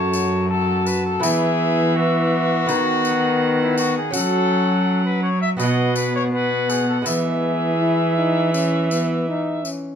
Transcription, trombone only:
0.00 0.50 F#4 medium
0.50 1.25 F#4 medium
1.24 2.68 B3 medium
2.69 3.98 B3 loud
4.15 5.29 C#4 loud
5.59 6.28 B3 medium
6.33 7.05 B3 medium
7.07 7.72 B3 medium
7.80 8.15 E4 medium
8.18 8.53 D#4 medium
8.54 8.90 C#4 medium
8.92 9.28 B3 medium
9.28 9.67 D#4 loud
9.65 9.95 C#4 medium

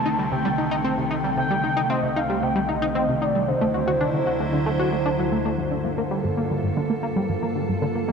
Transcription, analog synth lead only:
0.00 0.32 A5 loud
0.32 1.07 G5 medium
1.38 1.91 G5 loud
1.90 2.18 D#5 loud
2.16 2.44 F5 loud
2.43 2.71 G5 loud
2.70 3.23 D#5 loud
3.22 3.49 D5 loud
3.48 5.06 C5 loud

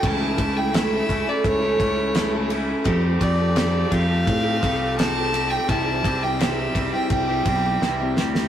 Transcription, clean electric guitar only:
0.02 0.71 C#3 medium
0.02 0.36 E3 medium
0.02 0.39 A3 loud
0.02 0.39 C#4 loud
0.02 0.40 E4 medium
0.37 0.72 E3 medium
0.37 0.74 A3 medium
0.37 0.74 C#4 medium
0.37 0.75 E4 medium
0.72 1.44 C#3 loud
0.72 1.08 E3 loud
0.72 1.10 A3 loud
0.72 1.11 C#4 loud
0.72 1.11 E4 loud
1.09 1.62 E3 medium
1.09 1.30 A3 medium
1.09 1.28 C#4 medium
1.09 1.26 E4 medium
1.27 1.64 A3 medium
1.27 1.63 C#4 medium
1.27 1.60 E4 medium
1.61 1.79 A3 medium
1.61 1.80 C#4 medium
1.61 1.81 E4 medium
1.79 2.13 E3 medium
1.79 1.98 A3 medium
1.79 1.97 C#4 medium
1.79 1.95 E4 medium
1.96 2.14 A3 medium
1.96 2.15 C#4 medium
1.96 2.16 E4 medium
2.13 2.83 C#3 medium
2.13 2.48 E3 medium
2.13 2.49 A3 loud
2.13 2.51 C#4 loud
2.13 2.52 E4 loud
2.50 2.83 E3 medium
2.50 2.69 A3 medium
2.50 2.67 C#4 medium
2.50 2.65 E4 loud
2.66 2.84 C#4 medium
2.66 2.83 E4 medium
2.70 2.84 A3 medium
2.84 3.18 F3 medium
2.84 3.20 A3 loud
2.84 3.22 C4 loud
2.84 3.23 G4 loud
3.19 3.53 F3 medium
3.19 3.54 A3 medium
3.19 3.56 C4 medium
3.19 3.57 G4 medium
3.54 3.90 F3 loud
3.54 3.90 A3 loud
3.54 3.93 C4 loud
3.54 3.93 G4 loud
3.91 4.45 F3 medium
3.91 4.11 A3 medium
3.91 4.09 C4 medium
3.91 4.07 G4 medium
4.08 4.45 A3 medium
4.08 4.44 C4 medium
4.08 4.42 G4 medium
4.43 4.61 A3 medium
4.43 4.62 C4 medium
4.43 4.63 G4 medium
4.61 4.95 F3 medium
4.61 4.81 A3 medium
4.61 4.80 C4 medium
4.61 4.77 G4 medium
4.78 4.97 C4 medium
4.78 4.98 G4 medium
4.83 4.96 A3 medium
4.96 5.30 F3 loud
4.96 5.31 A3 loud
4.96 5.33 C4 loud
4.96 5.33 G4 loud
5.31 5.66 F3 medium
5.31 5.51 A3 medium
5.31 5.50 C4 medium
5.31 5.48 G4 medium
5.49 5.67 A3 medium
5.49 5.67 C4 medium
5.49 5.66 G4 medium
5.66 6.37 C3 loud
5.66 6.01 E3 medium
5.66 6.02 G3 loud
5.66 6.03 C4 loud
5.66 6.04 G4 loud
6.02 6.38 E3 medium
6.02 6.39 G3 medium
6.02 6.40 C4 medium
6.02 6.40 G4 medium
6.38 7.10 C3 medium
6.38 6.72 E3 loud
6.38 6.73 G3 loud
6.38 6.75 C4 loud
6.38 6.76 G4 loud
6.74 7.28 E3 medium
6.74 6.95 G3 medium
6.74 6.93 C4 medium
6.74 6.91 G4 medium
6.92 7.29 G3 medium
6.92 7.28 C4 medium
6.92 7.26 G4 medium
7.27 7.46 G3 medium
7.27 7.47 C4 medium
7.27 7.48 G4 medium
7.46 7.80 E3 medium
7.46 7.65 G3 medium
7.46 7.64 C4 medium
7.46 7.62 G4 medium
7.63 7.81 G3 medium
7.63 7.81 C4 medium
7.63 7.83 G4 medium
7.80 8.48 C3 loud
7.80 8.15 E3 loud
7.80 8.17 G3 loud
7.80 8.17 C4 loud
7.80 8.19 G4 loud
8.16 8.48 E3 medium
8.16 8.36 G3 medium
8.16 8.34 C4 medium
8.16 8.32 G4 medium
8.33 8.48 G3 medium
8.33 8.48 C4 medium
8.33 8.48 G4 medium

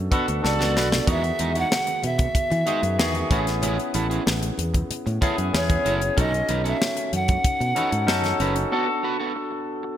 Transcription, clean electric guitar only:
0.12 0.27 B3 medium
0.12 0.27 F#4 medium
0.12 0.27 B4 medium
0.28 muted clean electric guitar stroke soft
0.44 muted clean electric guitar stroke soft
0.59 0.74 B3 medium
0.59 0.75 F#4 medium
0.59 0.75 A4 medium
0.76 0.87 B3 medium
0.76 0.88 F#4 medium
0.76 0.88 B4 medium
0.92 muted clean electric guitar stroke soft
1.07 1.23 G#3 medium
1.07 1.23 D#4 medium
1.07 1.23 F#4 medium
1.24 muted clean electric guitar stroke soft
1.40 1.51 G#3 medium
1.40 1.52 D#4 medium
1.40 1.52 G#4 medium
1.55 1.68 G#3 medium
1.55 1.68 D#4 medium
1.55 1.67 F#4 medium
1.71 muted clean electric guitar stroke soft
1.87 muted clean electric guitar stroke soft
2.18 muted clean electric guitar stroke soft
2.51 muted clean electric guitar stroke soft
2.66 2.82 G#3 medium
2.66 2.82 D#4 medium
2.66 2.82 G#4 medium
2.83 muted clean electric guitar stroke soft
3.15 muted clean electric guitar stroke soft
3.31 3.46 C#4 medium
3.31 3.46 E4 medium
3.31 3.46 A4 medium
3.47 muted clean electric guitar stroke soft
3.62 3.78 C#4 medium
3.62 3.78 E4 medium
3.62 3.77 G#4 loud
3.78 muted clean electric guitar stroke soft
3.94 4.06 C#4 medium
3.94 4.06 E4 medium
3.94 4.07 A4 medium
4.10 4.22 C#4 medium
4.10 4.22 E4 medium
4.10 4.22 G#4 medium
4.26 muted clean electric guitar stroke soft
4.42 muted clean electric guitar stroke soft
4.74 muted clean electric guitar stroke medium
5.06 muted clean electric guitar stroke soft
5.21 5.37 C#4 medium
5.21 5.37 E4 medium
5.21 5.37 A4 loud
5.38 muted clean electric guitar stroke soft
5.70 muted clean electric guitar stroke soft
5.85 6.00 C#4 medium
5.85 6.01 E4 medium
5.85 6.01 A4 medium
6.02 muted clean electric guitar stroke medium
6.17 6.32 C#4 medium
6.17 6.33 D#4 medium
6.17 6.32 A4 medium
6.33 muted clean electric guitar stroke soft
6.49 6.61 C#4 medium
6.49 6.61 D#4 medium
6.49 6.62 B4 medium
6.64 6.77 C#4 medium
6.64 6.77 D#4 medium
6.64 6.76 A4 medium
6.81 muted clean electric guitar stroke medium
6.97 muted clean electric guitar stroke soft
7.29 muted clean electric guitar stroke soft
7.60 muted clean electric guitar stroke soft
7.76 7.92 C#4 medium
7.76 7.92 D#4 medium
7.76 7.92 B4 medium
7.92 muted clean electric guitar stroke soft
8.24 muted clean electric guitar stroke soft
8.40 8.55 C#4 medium
8.40 8.56 D#4 medium
8.40 8.56 B4 medium
8.56 muted clean electric guitar stroke soft
8.72 8.87 B3 medium
8.72 8.87 F#4 medium
8.72 8.86 A4 medium
8.87 muted clean electric guitar stroke soft
9.03 9.15 B3 medium
9.03 9.16 F#4 medium
9.03 9.16 B4 medium
9.20 9.32 B3 soft
9.20 9.32 F#4 medium
9.20 9.32 A4 medium
9.36 muted clean electric guitar stroke soft
9.51 muted clean electric guitar stroke soft
9.83 muted clean electric guitar stroke medium

